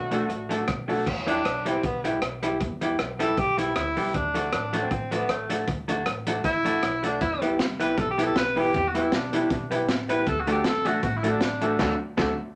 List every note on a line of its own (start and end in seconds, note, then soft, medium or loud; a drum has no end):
0.00 0.24 B1 loud
0.00 0.65 A3 medium
0.00 0.64 D4 medium
0.00 0.64 F#4 medium
0.11 0.26 F#3 medium
0.11 0.24 A3 medium
0.11 0.26 A3 loud
0.11 0.24 D4 medium
0.11 0.26 D4 medium
0.11 0.24 F#4 medium
0.11 0.26 F#4 loud
0.11 0.24 A4 loud
0.11 closed hi-hat medium
0.29 0.62 A1 loud
0.29 muted hollow-body jazz guitar stroke soft
0.29 closed hi-hat medium
0.49 0.64 F#3 medium
0.49 0.64 A3 medium
0.49 0.62 A3 medium
0.49 0.64 D4 medium
0.49 0.63 D4 medium
0.49 0.64 F#4 medium
0.49 0.63 F#4 medium
0.49 0.63 A4 loud
0.49 closed hi-hat medium
0.68 1.01 B1 loud
0.68 kick loud
0.68 cross-stick loud
0.68 closed hi-hat medium
0.88 1.02 F#3 medium
0.88 1.01 A3 medium
0.88 1.03 A3 medium
0.88 1.01 D4 medium
0.88 1.03 D4 medium
0.88 1.01 F#4 medium
0.88 1.03 F#4 medium
0.88 1.01 A4 loud
0.88 open hi-hat soft
1.07 1.39 E2 loud
1.07 kick loud
1.07 crash medium
1.26 1.41 G3 medium
1.26 1.41 B3 medium
1.26 1.70 D4 loud
1.26 1.41 E4 medium
1.26 1.42 G4 medium
1.26 closed hi-hat medium
1.45 1.78 B1 medium
1.45 cross-stick loud
1.45 closed hi-hat medium
1.65 1.80 G3 medium
1.65 1.80 B3 medium
1.65 1.85 C4 medium
1.65 1.80 E4 medium
1.65 1.80 G4 medium
1.65 closed hi-hat medium
1.83 2.16 B1 loud
1.83 2.20 B3 medium
1.83 kick loud
1.83 closed hi-hat medium
2.04 2.18 G3 medium
2.04 2.19 B3 medium
2.04 2.19 E4 medium
2.04 2.19 G4 medium
2.04 closed hi-hat medium
2.22 2.62 B1 medium
2.22 cross-stick loud
2.22 closed hi-hat medium
2.43 2.57 G3 medium
2.43 2.57 B3 medium
2.43 2.57 E4 medium
2.43 2.57 G4 medium
2.43 closed hi-hat medium
2.60 2.93 E2 loud
2.60 kick loud
2.60 closed hi-hat medium
2.81 2.95 G3 medium
2.81 2.96 B3 medium
2.81 2.96 E4 medium
2.81 2.96 G4 medium
2.81 closed hi-hat medium
2.99 3.32 B1 medium
2.99 cross-stick loud
2.99 closed hi-hat medium
3.19 3.34 G3 medium
3.19 3.34 B3 medium
3.19 3.34 E4 medium
3.19 3.34 G4 medium
3.19 3.40 A4 loud
3.19 closed hi-hat medium
3.37 3.70 B1 loud
3.37 3.60 G4 loud
3.37 muted hollow-body jazz guitar stroke soft
3.37 kick loud
3.37 closed hi-hat medium
3.58 3.72 G3 medium
3.58 3.72 B3 medium
3.58 3.75 E4 loud
3.58 3.73 E4 medium
3.58 3.73 G4 medium
3.58 closed hi-hat medium
3.76 3.94 D2 medium
3.76 4.16 E4 loud
3.76 cross-stick loud
3.76 closed hi-hat medium
3.97 4.12 C2 medium
3.97 4.11 G3 medium
3.97 4.11 B3 medium
3.97 4.11 E4 medium
3.97 4.11 G4 medium
3.97 open hi-hat medium
4.14 4.47 D2 loud
4.14 4.53 D4 loud
4.14 kick loud
4.14 closed hi-hat medium
4.34 4.49 F#3 medium
4.34 4.49 A3 medium
4.34 4.49 D4 medium
4.34 4.49 F#4 medium
4.34 closed hi-hat medium
4.53 4.85 A1 loud
4.53 4.84 D4 medium
4.53 cross-stick loud
4.53 closed hi-hat medium
4.73 4.87 F#3 medium
4.73 4.87 A3 loud
4.73 4.88 D4 loud
4.73 4.88 F#4 loud
4.73 closed hi-hat medium
4.82 5.14 C4 medium
4.91 5.24 A1 loud
4.91 kick loud
4.91 closed hi-hat medium
5.11 5.26 F#3 medium
5.11 5.26 A3 medium
5.11 5.32 B3 medium
5.11 5.26 D4 medium
5.11 5.26 F#4 medium
5.11 closed hi-hat medium
5.29 5.62 A1 medium
5.29 5.51 A3 medium
5.29 cross-stick loud
5.29 closed hi-hat medium
5.50 5.64 F#3 medium
5.50 5.64 A3 medium
5.50 5.64 D4 medium
5.50 5.65 F#4 medium
5.50 closed hi-hat medium
5.68 6.00 D2 loud
5.68 kick loud
5.68 closed hi-hat medium
5.88 6.02 F#3 medium
5.88 6.03 A3 medium
5.88 6.03 D4 medium
5.88 6.03 F#4 loud
5.88 closed hi-hat medium
6.06 6.39 A1 loud
6.06 cross-stick loud
6.06 closed hi-hat medium
6.27 6.41 F#3 medium
6.27 6.41 A3 medium
6.27 6.41 D4 medium
6.27 6.42 F#4 loud
6.27 closed hi-hat medium
6.44 6.77 A1 loud
6.44 7.06 E4 loud
6.44 muted hollow-body jazz guitar stroke soft
6.44 kick loud
6.44 closed hi-hat medium
6.65 6.79 F#3 medium
6.65 6.79 A3 medium
6.65 6.79 D4 medium
6.65 6.80 F#4 medium
6.65 closed hi-hat medium
6.83 7.15 B1 loud
6.83 cross-stick loud
6.83 closed hi-hat medium
7.03 7.17 F#3 medium
7.03 7.18 A3 medium
7.03 7.18 D4 medium
7.03 7.21 D4 loud
7.03 7.18 F#4 medium
7.03 closed hi-hat medium
7.21 7.53 E2 loud
7.21 7.41 E4 medium
7.21 kick loud
7.21 closed hi-hat medium
7.41 7.56 G3 medium
7.41 7.54 B3 medium
7.41 7.56 B3 medium
7.41 7.54 E4 medium
7.41 7.56 E4 medium
7.41 7.54 G4 medium
7.41 7.56 G4 medium
7.41 7.54 B4 medium
7.41 closed hi-hat medium
7.59 7.92 C2 medium
7.59 snare loud
7.59 closed hi-hat medium
7.80 7.94 G3 medium
7.80 7.92 B3 medium
7.80 7.94 B3 medium
7.80 7.92 E4 medium
7.80 7.94 E4 medium
7.80 7.92 G4 medium
7.80 7.95 G4 medium
7.80 7.99 B4 loud
7.80 7.92 B4 loud
7.80 closed hi-hat medium
7.98 8.30 B1 loud
7.98 8.10 A4 loud
7.98 kick loud
7.98 closed hi-hat medium
8.11 8.25 G4 medium
8.18 8.32 G3 medium
8.18 8.30 B3 medium
8.18 8.32 B3 medium
8.18 8.31 E4 medium
8.18 8.33 E4 medium
8.18 8.31 G4 medium
8.18 8.33 G4 medium
8.18 8.31 B4 medium
8.18 closed hi-hat medium
8.23 8.36 A4 loud
8.36 8.69 B1 loud
8.36 8.60 B4 loud
8.36 snare loud
8.36 closed hi-hat medium
8.56 8.70 G3 medium
8.56 8.69 B3 loud
8.56 8.70 B3 medium
8.56 8.69 E4 medium
8.56 8.71 E4 medium
8.56 8.69 G4 medium
8.56 8.71 G4 medium
8.56 8.75 G4 loud
8.56 8.69 B4 loud
8.56 open hi-hat medium
8.74 9.07 E2 loud
8.74 8.90 G4 loud
8.74 kick loud
8.74 closed hi-hat medium
8.88 9.03 F#4 medium
8.94 9.09 G3 medium
8.94 9.07 B3 loud
8.94 9.09 B3 medium
8.94 9.07 E4 medium
8.94 9.09 E4 medium
8.94 9.07 G4 medium
8.94 9.10 G4 medium
8.94 9.07 B4 loud
8.94 closed hi-hat loud
9.02 9.16 E4 medium
9.12 9.45 B1 medium
9.12 9.72 D4 medium
9.12 snare loud
9.12 closed hi-hat medium
9.32 9.47 G3 medium
9.32 9.45 B3 medium
9.32 9.47 B3 medium
9.32 9.45 E4 medium
9.32 9.48 E4 loud
9.32 9.45 G4 medium
9.32 9.48 G4 loud
9.32 9.45 B4 loud
9.32 closed hi-hat medium
9.50 9.88 B1 loud
9.50 kick loud
9.50 closed hi-hat medium
9.71 9.85 G3 medium
9.71 9.83 B3 medium
9.71 9.85 B3 medium
9.71 9.83 E4 medium
9.71 9.86 E4 loud
9.71 9.83 G4 medium
9.71 9.86 G4 loud
9.71 9.84 B4 loud
9.71 closed hi-hat medium
9.88 10.21 A1 medium
9.88 snare loud
9.88 closed hi-hat medium
10.09 10.23 G3 medium
10.09 10.21 B3 loud
10.09 10.23 B3 medium
10.09 10.21 E4 medium
10.09 10.24 E4 medium
10.09 10.22 G4 medium
10.09 10.24 G4 medium
10.09 10.22 B4 loud
10.09 10.29 B4 loud
10.09 closed hi-hat medium
10.27 10.59 D2 loud
10.27 10.41 A4 loud
10.27 kick loud
10.27 closed hi-hat medium
10.40 10.52 F#4 loud
10.47 10.61 F#3 medium
10.47 10.59 A3 medium
10.47 10.62 A3 loud
10.47 10.59 D4 medium
10.47 10.62 D4 loud
10.47 10.60 F#4 medium
10.47 10.62 F#4 loud
10.47 10.60 A4 loud
10.47 closed hi-hat medium
10.52 10.67 G4 medium
10.64 10.97 A1 loud
10.64 10.88 A4 loud
10.64 snare loud
10.64 closed hi-hat medium
10.85 10.99 F#3 loud
10.85 10.97 A3 loud
10.85 11.00 A3 medium
10.85 10.98 D4 medium
10.85 11.00 D4 loud
10.85 10.98 F#4 medium
10.85 11.03 F#4 loud
10.85 11.00 F#4 loud
10.85 10.98 A4 loud
10.85 closed hi-hat medium
11.03 11.36 A1 loud
11.03 11.19 F#4 loud
11.03 kick loud
11.03 closed hi-hat medium
11.17 11.30 E4 loud
11.23 11.38 F#3 medium
11.23 11.36 A3 medium
11.23 11.38 A3 loud
11.23 11.36 D4 medium
11.23 11.38 D4 loud
11.23 11.36 F#4 medium
11.23 11.38 F#4 loud
11.23 11.36 A4 loud
11.23 closed hi-hat medium
11.29 11.41 D4 medium
11.41 11.74 A1 loud
11.41 11.97 D4 medium
11.41 snare loud
11.41 closed hi-hat medium
11.61 11.76 F#3 medium
11.61 11.74 A3 loud
11.61 11.76 A3 medium
11.61 11.74 D4 medium
11.61 11.76 D4 medium
11.61 11.74 F#4 medium
11.61 11.77 F#4 medium
11.61 11.75 A4 loud
11.61 closed hi-hat medium
11.79 11.94 D2 loud
11.79 11.93 F#3 loud
11.79 11.93 A3 loud
11.79 11.94 A3 loud
11.79 11.94 D4 loud
11.79 11.94 F#4 loud
11.79 11.94 A4 loud
11.79 kick loud
11.79 snare loud
11.79 crash medium
12.17 12.32 D2 loud
12.17 12.32 F#3 loud
12.17 12.32 A3 loud
12.17 12.32 D4 loud
12.17 12.32 F#4 loud
12.17 12.33 F#4 loud
12.17 12.32 A4 loud
12.17 kick loud
12.17 snare loud